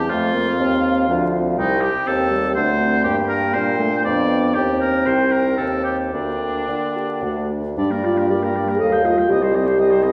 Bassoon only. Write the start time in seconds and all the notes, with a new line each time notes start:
Already playing: E2
0.10 F2
0.59 D#2
1.09 D2
1.58 C2
2.07 D#2
2.57 D2
3.05 G2
3.55 A#2
4.05 F2
4.55 D#2
5.06 C2
5.59 D#2
6.13 D2
6.68 D3
7.23 D2
7.77 G2
8.80 D#2
9.30 C2